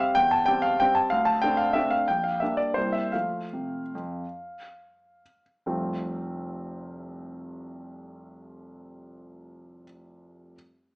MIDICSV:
0, 0, Header, 1, 2, 480
1, 0, Start_track
1, 0, Key_signature, -1, "major"
1, 0, Tempo, 321371
1, 237, Time_signature, 3, 2, 24, 8
1, 3606, Tempo, 368098
1, 5046, Tempo, 412655
1, 6486, Tempo, 451128
1, 10326, Tempo, 439883
1, 13149, End_track
2, 0, Start_track
2, 0, Title_t, "Grand piano"
2, 0, Program_c, 0, 0
2, 0, Note_on_c, 0, 55, 47
2, 0, Note_on_c, 0, 60, 45
2, 0, Note_on_c, 0, 67, 56
2, 0, Note_on_c, 0, 77, 75
2, 198, Note_off_c, 0, 55, 0
2, 204, Note_off_c, 0, 60, 0
2, 205, Note_off_c, 0, 67, 0
2, 222, Note_on_c, 0, 79, 98
2, 231, Note_off_c, 0, 77, 0
2, 247, Note_on_c, 0, 40, 57
2, 462, Note_off_c, 0, 79, 0
2, 466, Note_on_c, 0, 81, 75
2, 500, Control_c, 0, 64, 127
2, 682, Note_on_c, 0, 79, 88
2, 698, Note_off_c, 0, 40, 0
2, 705, Note_off_c, 0, 81, 0
2, 709, Note_on_c, 0, 55, 41
2, 716, Note_on_c, 0, 67, 46
2, 718, Note_on_c, 0, 60, 43
2, 926, Note_on_c, 0, 77, 83
2, 934, Note_off_c, 0, 79, 0
2, 1144, Note_off_c, 0, 55, 0
2, 1149, Note_off_c, 0, 60, 0
2, 1149, Note_off_c, 0, 67, 0
2, 1181, Note_off_c, 0, 77, 0
2, 1191, Note_on_c, 0, 79, 90
2, 1204, Control_c, 0, 64, 0
2, 1217, Note_on_c, 0, 60, 50
2, 1224, Note_on_c, 0, 55, 45
2, 1234, Note_on_c, 0, 67, 48
2, 1417, Note_on_c, 0, 81, 74
2, 1436, Note_off_c, 0, 79, 0
2, 1636, Note_off_c, 0, 60, 0
2, 1640, Note_off_c, 0, 55, 0
2, 1643, Note_on_c, 0, 77, 82
2, 1646, Note_off_c, 0, 67, 0
2, 1660, Note_off_c, 0, 81, 0
2, 1673, Note_on_c, 0, 38, 60
2, 1872, Note_on_c, 0, 81, 81
2, 1887, Note_off_c, 0, 77, 0
2, 1928, Control_c, 0, 64, 127
2, 2115, Note_on_c, 0, 79, 89
2, 2123, Note_off_c, 0, 81, 0
2, 2124, Note_off_c, 0, 38, 0
2, 2146, Note_on_c, 0, 60, 42
2, 2149, Note_on_c, 0, 57, 36
2, 2150, Note_on_c, 0, 62, 44
2, 2347, Note_on_c, 0, 77, 76
2, 2372, Note_off_c, 0, 79, 0
2, 2586, Note_on_c, 0, 76, 75
2, 2589, Note_off_c, 0, 60, 0
2, 2591, Note_off_c, 0, 57, 0
2, 2592, Note_off_c, 0, 62, 0
2, 2616, Note_off_c, 0, 77, 0
2, 2619, Note_on_c, 0, 57, 41
2, 2620, Note_on_c, 0, 60, 40
2, 2626, Note_on_c, 0, 62, 50
2, 2650, Control_c, 0, 64, 0
2, 2845, Note_on_c, 0, 77, 75
2, 2859, Note_off_c, 0, 76, 0
2, 3064, Note_off_c, 0, 57, 0
2, 3064, Note_off_c, 0, 60, 0
2, 3067, Note_off_c, 0, 62, 0
2, 3102, Note_off_c, 0, 77, 0
2, 3103, Note_on_c, 0, 79, 78
2, 3130, Note_on_c, 0, 34, 45
2, 3341, Note_on_c, 0, 77, 62
2, 3349, Note_off_c, 0, 79, 0
2, 3374, Control_c, 0, 64, 127
2, 3585, Note_on_c, 0, 76, 65
2, 3596, Note_off_c, 0, 34, 0
2, 3597, Note_off_c, 0, 77, 0
2, 3610, Note_on_c, 0, 55, 37
2, 3615, Note_on_c, 0, 58, 37
2, 3618, Control_c, 0, 64, 0
2, 3622, Note_on_c, 0, 62, 42
2, 3810, Note_on_c, 0, 74, 70
2, 3821, Note_off_c, 0, 76, 0
2, 4020, Note_off_c, 0, 55, 0
2, 4023, Note_off_c, 0, 58, 0
2, 4026, Note_off_c, 0, 62, 0
2, 4034, Note_on_c, 0, 72, 69
2, 4053, Note_off_c, 0, 74, 0
2, 4055, Note_on_c, 0, 36, 48
2, 4055, Note_on_c, 0, 55, 33
2, 4066, Note_on_c, 0, 58, 32
2, 4069, Note_on_c, 0, 64, 36
2, 4271, Note_on_c, 0, 76, 64
2, 4287, Note_off_c, 0, 72, 0
2, 4307, Control_c, 0, 64, 127
2, 4490, Note_off_c, 0, 55, 0
2, 4496, Note_off_c, 0, 58, 0
2, 4498, Note_off_c, 0, 64, 0
2, 4524, Note_off_c, 0, 36, 0
2, 4527, Note_off_c, 0, 76, 0
2, 4529, Note_on_c, 0, 77, 56
2, 4550, Note_on_c, 0, 57, 30
2, 4550, Note_on_c, 0, 65, 29
2, 4553, Note_on_c, 0, 53, 36
2, 4562, Control_c, 0, 64, 0
2, 4879, Control_c, 0, 64, 127
2, 4902, Note_off_c, 0, 53, 0
2, 4949, Note_off_c, 0, 65, 0
2, 4950, Note_off_c, 0, 57, 0
2, 5060, Note_on_c, 0, 48, 39
2, 5389, Note_off_c, 0, 48, 0
2, 5537, Control_c, 0, 64, 0
2, 5546, Note_on_c, 0, 41, 44
2, 5874, Note_off_c, 0, 41, 0
2, 6268, Control_c, 0, 64, 127
2, 6980, Control_c, 0, 64, 0
2, 7196, Note_off_c, 0, 77, 0
2, 7449, Note_on_c, 0, 29, 45
2, 7449, Note_on_c, 0, 36, 39
2, 7452, Note_on_c, 0, 53, 38
2, 7455, Note_on_c, 0, 60, 37
2, 7457, Note_on_c, 0, 57, 35
2, 7462, Note_on_c, 0, 65, 36
2, 7719, Control_c, 0, 64, 127
2, 11923, Note_off_c, 0, 29, 0
2, 11923, Note_off_c, 0, 36, 0
2, 11925, Note_off_c, 0, 53, 0
2, 11926, Note_off_c, 0, 60, 0
2, 11927, Note_off_c, 0, 57, 0
2, 11930, Note_off_c, 0, 65, 0
2, 12709, Control_c, 0, 64, 0
2, 13149, End_track
0, 0, End_of_file